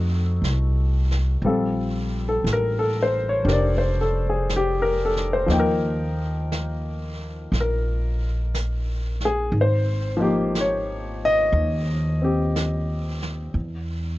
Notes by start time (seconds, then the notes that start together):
Already playing: F2 A3 C4 D#4 F#4 A4
0.42 C2, brush sweep, snare, hi-hat pedal
1.11 snare
1.42 A#1 G3 C4 F4, brush sweep
1.46 A4
2.29 A4
2.44 A1, brush sweep, snare, hi-hat pedal
2.53 A#4
2.79 A4
3.03 C5
3.29 C#5
3.45 F1 D4 G4 A#4, brush sweep, snare
3.52 D5
3.78 C5
4.01 A4
4.30 G#4
4.49 brush sweep, snare, hi-hat pedal
4.56 G4
4.82 A#4
5.05 A4
5.16 snare
5.33 C5
5.46 D#2 F3 A#3 D#4, brush sweep, snare
5.52 G5
5.59 A#4
6.52 brush sweep, snare, hi-hat pedal
7.52 A#1, brush sweep, snare
7.60 A#4
8.55 brush sweep, snare, hi-hat pedal
9.20 snare
9.25 G#4
9.52 G#1, brush sweep
9.61 C5
10.17 F3 A#3 D#4
10.22 G4
10.55 brush sweep, snare, hi-hat pedal
10.61 C#5
11.25 D#5
11.52 D#2, brush sweep
12.22 C4 G4
12.56 brush sweep, snare, hi-hat pedal
13.22 snare
13.54 E2, brush sweep